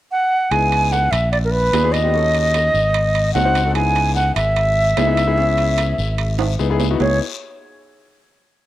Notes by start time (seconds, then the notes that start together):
0.11 F#5
0.51 C#2 B3 D#4 E4 G#4 G#5, high timbale, long guiro
0.72 high timbale
0.92 F#5, low timbale, short guiro
1.11 A#1 E5, high timbale, short guiro
1.32 D5, high timbale, long guiro
1.45 A#4
1.51 B4
1.73 D#2 B3 D4 F4 G#4, high timbale, low timbale, short guiro
1.83 B3 D4 F4 G#4
1.92 D#5, high timbale, short guiro
2.03 B3 D4 F4 G4
2.14 C#4 D#4 F#4 A4, long guiro
2.35 high timbale
2.54 high timbale, low timbale, short guiro
2.74 G#1, short guiro
2.94 high timbale, long guiro
3.15 high timbale
3.34 C#2 C4 D#4 F#4 A4 F#5, low timbale, short guiro
3.45 C4 D#4 F#4 C5
3.55 high timbale, short guiro
3.65 C4 D#4 F#4 A4
3.74 B3 D#4 E4 G#4 G#5, high timbale, long guiro
3.96 high timbale
4.15 F#5, low timbale, short guiro
4.36 G#1 E5, high timbale, short guiro
4.56 high timbale, long guiro
4.97 C#2 B3 D#4 E4 G#4, high timbale, low timbale, short guiro
5.07 B3 D#4 E4 G#4
5.17 high timbale, short guiro
5.27 B3 D#4 E4 G#4
5.37 B3 C#4 E4 G#4, long guiro
5.58 high timbale
5.78 high timbale, low timbale, short guiro
5.98 G#1, short guiro
6.18 high timbale, long guiro
6.39 high timbale
6.59 C#2 B3 D#4 E4 G#4, short guiro
6.70 B3 D#4 E4 G#4
6.80 low timbale, short guiro
6.91 B3 D#4 E4 F#4
7.00 C#2 B3 D#4 E4 G#4 C#5, low timbale, long guiro